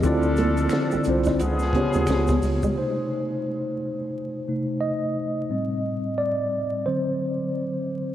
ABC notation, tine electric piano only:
X:1
M:4/4
L:1/8
Q:"Swing 16ths" 1/4=88
K:Dphr
V:1 name="Tine electric piano"
[D,C=EFd]3 [D,CEFc] z [_D,_CFG_d]3 | c6 e2- | e2 d2 c3 z |]
V:2 name="Tine electric piano" clef=bass
z8 | [C,A,E]3 z2 [C,A,E] z2 | [A,,G,C]3 z [D,^F,C]4 |]